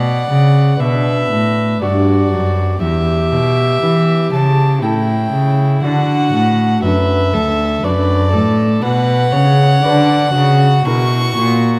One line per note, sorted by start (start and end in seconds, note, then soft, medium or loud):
0.00 0.25 B2 soft
0.00 0.28 B2 medium
0.00 0.79 D5 medium
0.00 0.81 F#5 medium
0.30 0.79 C#3 medium
0.30 0.76 C#3 soft
0.80 1.30 B2 medium
0.80 1.27 B2 soft
0.80 1.78 B3 soft
0.80 1.78 D4 soft
0.80 1.78 F#4 soft
0.80 1.83 B4 medium
0.80 1.81 E5 medium
1.31 1.81 A2 soft
1.31 1.78 A2 soft
1.81 2.31 G2 medium
1.81 2.28 G2 soft
1.81 2.79 B3 soft
1.81 2.79 D4 soft
1.81 2.81 F#4 medium
1.81 2.79 F#4 soft
1.81 2.81 D5 medium
2.32 2.81 F#2 medium
2.32 2.79 F#2 soft
2.81 3.34 E2 medium
2.81 3.29 E2 soft
2.81 4.78 G4 medium
2.81 4.30 E5 medium
3.32 3.78 B2 soft
3.32 3.82 B2 medium
3.83 4.32 E3 medium
3.83 4.29 E3 soft
3.83 4.29 B3 soft
3.83 4.79 E4 soft
3.83 4.79 G4 soft
4.32 4.84 C#3 medium
4.32 4.79 C#3 soft
4.32 4.84 A5 medium
4.82 5.32 A2 medium
4.82 5.29 A2 soft
4.82 5.80 C#4 soft
4.82 5.84 E4 medium
4.82 5.80 E4 soft
4.82 5.80 A4 soft
4.82 5.82 G5 medium
5.32 5.82 C#3 medium
5.32 5.80 C#3 soft
5.82 6.32 D3 medium
5.82 6.30 D3 medium
5.82 6.83 F#4 medium
5.82 6.82 F#5 medium
6.33 6.83 A2 medium
6.33 6.80 A2 soft
6.83 7.35 F#2 medium
6.83 7.30 F#2 soft
6.83 7.80 D4 soft
6.83 7.80 F#4 soft
6.83 7.80 A4 soft
6.83 7.35 B4 medium
6.83 7.86 E5 medium
7.33 7.82 D2 medium
7.33 7.80 D2 soft
7.33 7.84 A4 medium
7.83 8.34 F#2 medium
7.83 8.29 F#2 medium
7.83 8.79 D4 soft
7.83 8.79 F#4 soft
7.83 8.80 A4 soft
7.83 8.32 B4 medium
7.83 8.83 D5 medium
8.33 8.82 A2 medium
8.33 8.79 A2 medium
8.33 8.84 A4 medium
8.82 9.34 B2 medium
8.82 9.29 B2 medium
8.82 9.33 B4 medium
8.82 10.87 F#5 loud
9.32 9.82 C#3 medium
9.32 9.79 C#3 medium
9.32 9.84 C#5 medium
9.83 10.33 D3 medium
9.83 10.31 D3 medium
9.83 10.82 D4 soft
9.83 10.82 F#4 soft
9.83 10.83 B4 medium
9.83 10.34 D5 medium
10.34 10.84 C#3 medium
10.34 10.82 C#3 medium
10.34 11.79 F#4 medium
10.85 11.35 B2 medium
10.85 11.33 B2 medium
10.85 11.79 E4 soft
10.85 11.79 F#4 soft
10.85 11.79 A#4 soft
10.85 11.79 C#6 loud
11.36 11.79 A#2 medium